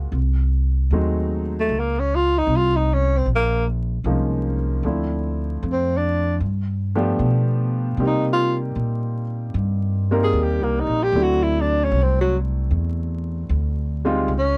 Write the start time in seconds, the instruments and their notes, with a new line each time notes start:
Already playing: upright bass C#2, grand piano G#3 A#3 C#4 F4 F#4
0.12 upright bass C2
0.91 upright bass D#2, grand piano F#3 G#3 A3 C4 D#4
1.60 tenor saxophone A3
1.69 upright bass C#2
1.79 tenor saxophone A#3
1.99 tenor saxophone C#4
2.15 tenor saxophone F4
2.38 tenor saxophone D#4
2.47 upright bass C2
2.56 tenor saxophone F4
2.76 tenor saxophone D#4
2.94 tenor saxophone C#4
3.17 tenor saxophone C4
3.26 upright bass A#1
3.36 tenor saxophone A#3
4.04 upright bass C2, grand piano F3 G#3 A#3 C#4 D#4
4.83 upright bass D2, grand piano F3 A3 C4 D4 E4
5.63 upright bass F2
5.72 tenor saxophone C4
5.97 tenor saxophone D4
6.40 upright bass G2
6.95 grand piano F3 A3 B3 D4 G4
7.19 upright bass B2
7.97 upright bass C3, grand piano G3 A#3 C4 D#4 G4
8.07 tenor saxophone D#4
8.33 tenor saxophone F4
8.76 upright bass A#2
9.54 upright bass G2
10.11 grand piano G3 A#3 C4 D#4 A#4
10.24 tenor saxophone G#4
10.33 upright bass D#2
10.43 tenor saxophone G4
10.60 upright bass C2, tenor saxophone A#3
10.80 tenor saxophone D#4
10.87 upright bass A#1
11.03 tenor saxophone G4
11.12 upright bass D2, grand piano F#3 A3 C4 D4 E4
11.23 tenor saxophone F#4
11.43 tenor saxophone E4
11.61 tenor saxophone D4
11.84 tenor saxophone C#4
11.92 upright bass C2
12.03 tenor saxophone C4
12.21 tenor saxophone F#3
12.71 upright bass E2
13.49 upright bass D2
14.05 grand piano G3 G#3 C4 D#4 F4
14.28 upright bass C#2
14.39 tenor saxophone C#4